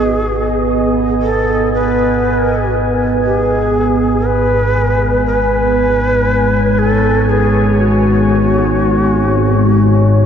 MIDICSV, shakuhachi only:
0, 0, Header, 1, 2, 480
1, 0, Start_track
1, 0, Tempo, 500000
1, 9848, End_track
2, 0, Start_track
2, 0, Title_t, "Shakuhachi"
2, 0, Program_c, 0, 77
2, 0, Note_on_c, 0, 68, 82
2, 909, Note_off_c, 0, 68, 0
2, 1175, Note_on_c, 0, 69, 77
2, 1623, Note_off_c, 0, 69, 0
2, 1676, Note_on_c, 0, 71, 79
2, 2601, Note_off_c, 0, 71, 0
2, 3115, Note_on_c, 0, 67, 78
2, 3259, Note_off_c, 0, 67, 0
2, 3259, Note_on_c, 0, 68, 78
2, 4093, Note_on_c, 0, 71, 90
2, 4107, Note_off_c, 0, 68, 0
2, 5046, Note_off_c, 0, 71, 0
2, 5051, Note_on_c, 0, 71, 89
2, 6513, Note_on_c, 0, 69, 86
2, 6527, Note_off_c, 0, 71, 0
2, 7002, Note_on_c, 0, 68, 73
2, 7017, Note_off_c, 0, 69, 0
2, 7490, Note_on_c, 0, 66, 74
2, 7505, Note_off_c, 0, 68, 0
2, 9848, Note_off_c, 0, 66, 0
2, 9848, End_track
0, 0, End_of_file